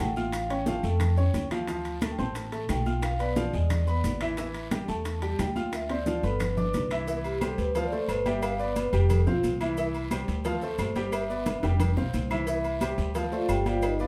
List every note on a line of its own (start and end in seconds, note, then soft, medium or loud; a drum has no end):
0.00 0.78 A1 medium
0.00 0.11 A3 medium
0.00 0.11 A4 medium
0.00 0.31 G5 loud
0.00 0.11 A5 medium
0.00 high timbale medium
0.00 low timbale medium
0.16 0.44 F4 medium
0.16 0.44 F5 medium
0.16 0.44 F6 medium
0.16 high bongo soft
0.16 high conga medium
0.16 short guiro medium
0.16 maracas soft
0.32 0.49 F5 medium
0.32 high bongo medium
0.32 high conga soft
0.32 high timbale medium
0.32 long guiro medium
0.32 claves medium
0.32 maracas medium
0.50 0.64 C#4 medium
0.50 0.64 C#5 medium
0.50 1.47 G5 medium
0.50 0.64 C#6 medium
0.50 high conga soft
0.50 high timbale medium
0.50 maracas soft
0.66 0.81 F3 medium
0.66 0.81 F4 medium
0.66 0.81 F5 medium
0.66 high bongo medium
0.66 high conga loud
0.66 short guiro medium
0.66 maracas medium
0.83 1.31 F2 medium
0.83 1.12 A3 medium
0.83 1.12 A4 medium
0.83 1.12 A5 medium
0.83 high bongo soft
0.83 short guiro medium
0.83 maracas soft
1.00 high bongo medium
1.00 high conga soft
1.00 low conga medium
1.00 high timbale medium
1.00 long guiro medium
1.00 claves medium
1.00 maracas medium
1.17 1.45 C#4 medium
1.17 1.45 C#5 medium
1.17 1.45 C#6 medium
1.17 high bongo soft
1.17 high conga soft
1.17 maracas soft
1.34 2.13 D2 medium
1.34 high bongo soft
1.34 low bongo medium
1.34 high conga medium
1.34 high timbale medium
1.34 short guiro medium
1.34 maracas medium
1.51 1.65 F3 medium
1.51 1.65 F4 medium
1.51 1.65 F5 medium
1.51 high bongo soft
1.51 high conga medium
1.51 high timbale medium
1.51 short guiro medium
1.51 claves medium
1.51 maracas soft
1.68 1.96 F3 medium
1.68 1.96 F4 medium
1.68 1.96 F5 medium
1.68 high bongo medium
1.68 high conga soft
1.68 high timbale medium
1.68 long guiro medium
1.68 maracas medium
1.85 high conga soft
1.85 high timbale medium
1.85 maracas soft
2.01 2.16 A3 medium
2.01 2.16 A4 medium
2.01 2.16 A5 medium
2.01 high bongo medium
2.01 high conga loud
2.01 high timbale medium
2.01 short guiro medium
2.01 claves medium
2.01 maracas medium
2.12 2.19 G5 medium
2.18 2.66 A1 medium
2.18 2.46 C4 medium
2.18 2.46 C5 medium
2.18 2.71 A5 loud
2.18 2.47 C6 medium
2.18 high bongo soft
2.18 short guiro medium
2.18 maracas soft
2.35 high bongo medium
2.35 high conga soft
2.35 high timbale medium
2.35 long guiro medium
2.35 maracas medium
2.52 2.80 A3 medium
2.52 2.80 A4 medium
2.52 2.80 A5 medium
2.52 high bongo soft
2.52 high conga soft
2.52 high timbale medium
2.52 maracas soft
2.69 3.48 B1 medium
2.69 3.04 G5 loud
2.69 high bongo soft
2.69 low bongo medium
2.69 high conga soft
2.69 high timbale medium
2.69 low timbale medium
2.69 short guiro medium
2.69 claves medium
2.69 maracas medium
2.85 3.13 F4 medium
2.85 3.14 F5 medium
2.85 3.14 F6 medium
2.85 high bongo soft
2.85 high conga medium
2.85 short guiro medium
2.85 maracas soft
3.02 3.21 F5 loud
3.02 high bongo medium
3.02 high conga soft
3.02 high timbale loud
3.02 long guiro medium
3.02 claves medium
3.02 maracas medium
3.19 3.33 B3 medium
3.19 3.34 B4 medium
3.19 4.17 D5 medium
3.19 3.34 B5 medium
3.19 high conga soft
3.19 high timbale medium
3.19 maracas soft
3.36 3.50 F3 medium
3.36 3.50 F4 medium
3.36 3.51 F5 medium
3.36 high bongo medium
3.36 high conga loud
3.36 short guiro medium
3.36 maracas medium
3.53 4.01 E2 medium
3.53 3.81 G#3 medium
3.53 3.81 G#4 medium
3.53 3.81 G#5 medium
3.53 short guiro medium
3.53 maracas soft
3.70 high bongo medium
3.70 high conga soft
3.70 low conga medium
3.70 high timbale loud
3.70 long guiro medium
3.70 claves medium
3.70 maracas medium
3.87 4.15 B3 medium
3.87 4.15 B4 medium
3.87 4.15 B5 medium
3.87 high bongo soft
3.87 high conga soft
3.87 maracas soft
4.04 4.83 A1 medium
4.04 high bongo soft
4.04 low bongo medium
4.04 high conga medium
4.04 high timbale medium
4.04 short guiro medium
4.04 maracas medium
4.21 4.35 E3 medium
4.21 4.35 E4 medium
4.21 4.35 E5 medium
4.21 high bongo soft
4.21 high timbale medium
4.21 short guiro medium
4.21 claves medium
4.21 maracas soft
4.37 4.66 E3 medium
4.37 4.66 E4 medium
4.37 4.66 E5 medium
4.37 high bongo medium
4.37 high conga soft
4.37 high timbale medium
4.37 long guiro medium
4.37 maracas medium
4.54 high conga soft
4.54 high timbale medium
4.54 maracas soft
4.71 4.85 G3 medium
4.71 4.85 G4 medium
4.71 4.85 G5 medium
4.71 high bongo medium
4.71 high conga loud
4.71 high timbale loud
4.71 short guiro medium
4.71 claves medium
4.71 maracas medium
4.88 5.36 E2 medium
4.88 5.16 A3 medium
4.88 5.16 A4 medium
4.88 5.35 A5 loud
4.88 5.16 A5 medium
4.88 high bongo soft
4.88 short guiro medium
4.88 maracas soft
5.05 high bongo medium
5.05 high conga soft
5.05 high timbale medium
5.05 long guiro medium
5.05 maracas medium
5.22 5.50 G3 medium
5.22 5.50 G4 medium
5.22 5.50 G5 medium
5.22 high bongo soft
5.22 high conga soft
5.22 high timbale medium
5.22 maracas soft
5.39 6.18 D2 medium
5.39 5.71 G5 loud
5.39 high bongo soft
5.39 low bongo medium
5.39 high conga soft
5.39 high timbale medium
5.39 low timbale medium
5.39 short guiro medium
5.39 claves medium
5.39 maracas medium
5.56 5.83 F4 medium
5.56 5.84 F5 medium
5.56 5.84 F6 medium
5.56 high bongo soft
5.56 high conga medium
5.56 short guiro medium
5.56 maracas soft
5.73 5.89 E5 loud
5.73 high bongo medium
5.73 high conga soft
5.73 high timbale medium
5.73 long guiro medium
5.73 claves medium
5.73 maracas medium
5.89 6.04 C4 medium
5.89 6.04 C5 medium
5.89 6.06 D5 medium
5.89 6.04 C6 medium
5.89 high conga soft
5.89 high timbale medium
5.89 maracas soft
6.06 6.20 F3 medium
6.06 6.21 F4 medium
6.06 6.23 D5 medium
6.06 6.21 F5 medium
6.06 high bongo medium
6.06 high conga loud
6.06 short guiro medium
6.06 maracas medium
6.23 6.70 G1 medium
6.23 6.51 B3 medium
6.23 6.41 A4 medium
6.23 6.51 B4 medium
6.23 6.51 B5 medium
6.23 high bongo soft
6.23 high conga soft
6.23 short guiro medium
6.23 maracas soft
6.40 6.88 B4 medium
6.40 high bongo medium
6.40 high conga soft
6.40 low conga medium
6.40 high timbale loud
6.40 long guiro medium
6.40 claves medium
6.40 maracas medium
6.57 6.85 D4 medium
6.57 6.85 D5 medium
6.57 6.85 D6 medium
6.57 high bongo soft
6.57 high conga soft
6.57 low conga medium
6.57 maracas soft
6.74 7.53 C2 medium
6.74 high bongo soft
6.74 low bongo medium
6.74 high conga medium
6.74 high timbale medium
6.74 short guiro medium
6.74 maracas medium
6.91 7.05 E3 medium
6.91 7.05 E4 medium
6.91 7.05 E5 medium
6.91 high bongo soft
6.91 high timbale loud
6.91 short guiro medium
6.91 claves medium
6.91 maracas soft
7.07 7.35 E3 medium
7.07 7.36 E4 medium
7.07 7.36 E5 medium
7.07 cowbell loud
7.07 high conga soft
7.07 long guiro medium
7.07 maracas medium
7.24 7.41 G4 medium
7.24 high conga soft
7.24 low agogo medium
7.24 maracas soft
7.41 7.69 G3 medium
7.41 7.69 G4 medium
7.41 7.58 A4 medium
7.41 7.69 C5 medium
7.41 cowbell medium
7.41 high conga medium
7.41 low agogo loud
7.41 short guiro medium
7.41 claves medium
7.41 maracas medium
7.58 8.05 D2 medium
7.58 7.74 B4 medium
7.58 cowbell medium
7.58 short guiro medium
7.58 maracas soft
7.75 7.89 F3 medium
7.75 7.89 F4 medium
7.75 7.86 C5 medium
7.75 7.89 F5 medium
7.75 cowbell loud
7.75 high conga soft
7.75 low agogo medium
7.75 long guiro medium
7.75 maracas medium
7.86 7.97 D5 medium
7.92 8.20 A3 medium
7.92 8.20 A4 medium
7.92 8.20 C5 medium
7.92 high conga soft
7.92 maracas soft
7.97 8.08 C5 medium
8.08 8.87 G1 medium
8.08 8.25 B4 medium
8.08 cowbell medium
8.08 high conga soft
8.08 low agogo loud
8.08 short guiro medium
8.08 claves medium
8.08 maracas medium
8.26 8.53 G3 medium
8.26 8.53 G4 medium
8.26 8.42 E5 medium
8.26 8.53 G5 medium
8.26 cowbell medium
8.26 high conga medium
8.26 low agogo medium
8.26 short guiro medium
8.26 maracas soft
8.42 8.59 F5 loud
8.42 cowbell loud
8.42 high conga soft
8.42 low agogo loud
8.42 long guiro medium
8.42 claves medium
8.42 maracas medium
8.59 8.87 B3 medium
8.59 8.87 B4 medium
8.59 8.76 D5 loud
8.59 8.87 D5 medium
8.59 high conga soft
8.59 maracas soft
8.76 8.93 B4 medium
8.76 cowbell medium
8.76 high conga loud
8.76 low agogo medium
8.76 short guiro medium
8.76 maracas medium
8.92 9.24 F1 loud
8.92 9.21 G3 medium
8.92 9.09 G4 medium
8.92 9.21 G4 medium
8.92 9.21 G5 medium
8.92 high conga soft
8.92 low agogo medium
8.92 short guiro medium
8.92 maracas soft
9.10 9.26 A4 medium
9.10 cowbell loud
9.10 high conga soft
9.10 low conga medium
9.10 low agogo loud
9.10 long guiro medium
9.10 claves medium
9.10 maracas medium
9.26 9.43 B1 medium
9.26 9.55 C4 medium
9.26 9.37 F4 medium
9.26 9.55 C5 medium
9.26 9.55 F5 medium
9.26 high conga soft
9.26 low conga medium
9.26 maracas soft
9.43 10.22 C2 medium
9.43 cowbell medium
9.43 high conga medium
9.43 low agogo medium
9.43 short guiro medium
9.43 maracas medium
9.61 9.74 E3 medium
9.61 9.75 E4 medium
9.61 9.75 E5 medium
9.61 high conga medium
9.61 low agogo loud
9.61 short guiro medium
9.61 claves medium
9.61 maracas soft
9.77 10.05 E3 medium
9.77 10.05 E4 medium
9.77 10.06 E5 medium
9.77 cowbell loud
9.77 high conga soft
9.77 long guiro medium
9.77 maracas medium
9.94 high conga soft
9.94 low agogo medium
9.94 maracas soft
10.11 10.39 G3 medium
10.11 10.39 G4 medium
10.11 10.40 C5 medium
10.11 cowbell medium
10.11 high conga loud
10.11 low agogo loud
10.11 short guiro medium
10.11 claves medium
10.11 maracas medium
10.28 10.75 D2 medium
10.28 cowbell medium
10.28 short guiro medium
10.28 maracas soft
10.45 10.59 F3 medium
10.45 10.59 F4 medium
10.45 10.59 F5 medium
10.45 cowbell loud
10.45 high conga soft
10.45 low agogo medium
10.45 long guiro medium
10.45 maracas medium
10.62 10.90 A3 medium
10.62 10.90 A4 medium
10.62 10.90 C5 medium
10.62 high conga soft
10.62 maracas soft
10.78 11.57 G1 medium
10.78 11.11 C5 medium
10.78 cowbell medium
10.78 high conga soft
10.78 low timbale medium
10.78 low agogo loud
10.78 short guiro medium
10.78 claves medium
10.78 maracas medium
10.95 11.24 G3 medium
10.95 11.24 G4 medium
10.95 11.24 G5 medium
10.95 cowbell medium
10.95 high conga medium
10.95 low agogo medium
10.95 short guiro medium
10.95 maracas soft
11.12 11.60 E5 loud
11.12 cowbell loud
11.12 high conga soft
11.12 low agogo loud
11.12 long guiro medium
11.12 claves medium
11.12 maracas medium
11.29 11.57 B3 medium
11.29 11.57 B4 medium
11.29 11.58 D5 medium
11.29 high conga soft
11.29 maracas soft
11.46 cowbell medium
11.46 high bongo medium
11.46 high conga loud
11.46 low agogo medium
11.46 short guiro medium
11.46 maracas medium
11.63 11.95 F1 medium
11.63 11.91 G3 medium
11.63 11.91 G4 medium
11.63 11.91 G5 medium
11.63 high bongo medium
11.63 high conga soft
11.63 low agogo medium
11.63 short guiro medium
11.63 maracas soft
11.80 cowbell loud
11.80 high bongo medium
11.80 high conga soft
11.80 low conga medium
11.80 low agogo loud
11.80 long guiro medium
11.80 claves medium
11.80 maracas medium
11.97 12.13 B1 medium
11.97 12.25 C4 medium
11.97 12.25 C5 medium
11.97 12.25 F5 medium
11.97 low bongo medium
11.97 high conga soft
11.97 maracas soft
12.14 12.93 C2 medium
12.14 12.45 C5 medium
12.14 cowbell medium
12.14 low bongo medium
12.14 high conga medium
12.14 low agogo medium
12.14 short guiro medium
12.14 maracas medium
12.30 12.45 E3 medium
12.30 12.45 E4 medium
12.30 12.45 E5 medium
12.30 low bongo medium
12.30 low agogo loud
12.30 short guiro medium
12.30 claves medium
12.30 maracas soft
12.47 12.75 E3 medium
12.47 12.75 E4 medium
12.47 12.76 E5 medium
12.47 12.95 E5 medium
12.47 cowbell loud
12.47 high conga soft
12.47 long guiro medium
12.47 maracas medium
12.64 high conga soft
12.64 low agogo medium
12.64 maracas soft
12.81 13.09 G3 medium
12.81 13.09 G4 medium
12.81 13.10 C5 medium
12.81 cowbell medium
12.81 high conga loud
12.81 low agogo loud
12.81 short guiro medium
12.81 claves medium
12.81 maracas medium
12.98 13.45 D2 loud
12.98 cowbell medium
12.98 short guiro medium
12.98 maracas soft
13.15 13.29 F3 medium
13.15 13.30 F4 medium
13.15 13.30 F5 medium
13.15 cowbell loud
13.15 high conga soft
13.15 low agogo medium
13.15 long guiro medium
13.15 maracas medium
13.32 13.60 A3 medium
13.32 13.49 F4 medium
13.32 13.60 A4 medium
13.32 13.60 C5 medium
13.32 13.49 C5 medium
13.32 13.49 D5 medium
13.32 13.49 F5 medium
13.32 high conga soft
13.32 maracas soft
13.49 14.07 G1 medium
13.49 13.66 G4 medium
13.49 13.66 G5 loud
13.49 cowbell medium
13.49 high conga soft
13.49 low agogo loud
13.49 short guiro medium
13.49 claves medium
13.49 maracas medium
13.66 13.94 G3 medium
13.66 13.83 F4 medium
13.66 13.94 G4 medium
13.66 13.83 C5 medium
13.66 13.83 D5 medium
13.66 13.83 F5 medium
13.66 13.94 G5 medium
13.66 cowbell medium
13.66 high conga medium
13.66 low agogo medium
13.66 short guiro medium
13.66 maracas soft
13.82 14.00 D#4 medium
13.82 14.00 D#5 medium
13.82 cowbell loud
13.82 high conga soft
13.82 low agogo loud
13.82 long guiro medium
13.82 claves medium
13.82 maracas medium
13.99 14.07 B3 medium
13.99 14.07 F4 medium
13.99 14.07 B4 medium
13.99 14.07 D5 medium
13.99 14.07 F5 loud
13.99 high conga soft
13.99 maracas soft